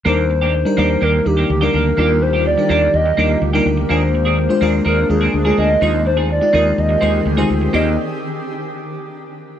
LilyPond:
<<
  \new Staff \with { instrumentName = "Soft synth lead" } { \time 4/4 \key ees \major \tempo 4 = 125 c''2 bes'8 g'8 g'8 bes'8~ | bes'8 c''8 d''4 ees''4 r4 | c''2 bes'8 aes'8 aes'8 ees''8~ | ees''8 c''8 d''4 ees''4 r4 |
ees''8 r2. r8 | }
  \new Staff \with { instrumentName = "FM electric piano" } { \time 4/4 \key ees \major <g d' ees' bes'>8. r8 <g d' ees' bes'>16 <g d' ees' bes'>8. r16 <g d' ees' bes'>8 r16 <g d' ees' bes'>8 r16 | <g d' ees' f'>8. r8 <g d' ees' bes'>16 <g d' ees' bes'>8. r16 <g d' ees' bes'>8 r16 <g d' ees' bes'>8 r16 | <aes d' f' bes'>8. r8 <aes d' f' c''>16 <aes d' f' bes'>8. r16 <aes d' f' bes'>8 r16 <aes d' f' aes'>8 r16 | <aes ees' f' c''>8. r8 <aes ees' f' g'>16 <aes ees' f' bes'>8. r16 <aes ees' f' c''>8 r16 <aes ees' f' c''>8 r16 |
<bes ees' g' d''>8 r2. r8 | }
  \new Staff \with { instrumentName = "Clean electric guitar" } { \time 4/4 \key ees \major <bes d' g'>8 r16 <bes d' g'>16 r8 <bes d' g'>8 <bes d' g'>8 r16 <bes d' g'>16 r16 <bes d' g'>16 <bes d' g'>16 r16 | <bes d' g'>8 r16 <bes d' g'>16 r8 <bes d' g'>8 r8 <bes d' g'>8 r16 <bes d' g'>8 r16 | <bes d' aes'>8 r16 <bes d' aes'>16 r8 <bes d' aes'>8 <bes d' aes'>8 r16 <bes d' aes'>16 r16 <bes d' aes'>16 <bes d' aes'>16 r16 | <c' ees' aes'>8 r16 <c' ees' aes'>16 r8 <c' ees' aes'>8 r8 <c' ees' aes'>8 r16 <c' ees' aes'>8 r16 |
<bes d' g'>16 r2. r8. | }
  \new Staff \with { instrumentName = "Ambient pad" } { \time 4/4 \key ees \major <ees bes g'>1~ | <ees bes g'>1 | <aes d'>1 | <ees c' g' aes'>1 |
r1 | }
  \new Staff \with { instrumentName = "Fretless electric bass" } { \clef bass \time 4/4 \key ees \major ees,4~ ees,16 r16 ees,8 ees,8 ees,8 d,8 d,8 | ees,4~ ees,16 r16 ees,8 ees,8 ees,8 d,8 d,8 | ees,4~ ees,16 r16 ees,8 ees,8 ees,8 d,8 d,8 | ees,4~ ees,16 r16 ees,8 ees,8 ees,8 d,8 d,8 |
ees,8 r2. r8 | }
>>